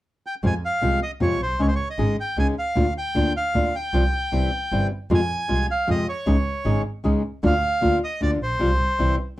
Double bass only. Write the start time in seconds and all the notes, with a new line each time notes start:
0.43 F2
0.83 C2
1.21 F2
1.40 B1
1.60 C#2
1.99 G#1
2.37 C#2
2.76 D2
3.15 D2
3.54 D2
3.94 C2
4.33 C2
4.72 G1
5.11 F2
5.50 C2
5.88 F2
6.27 C#2
6.66 G#1
7.05 C#2
7.44 D2
7.83 D2
8.22 D2
8.41 A#1
8.60 C2
8.99 C2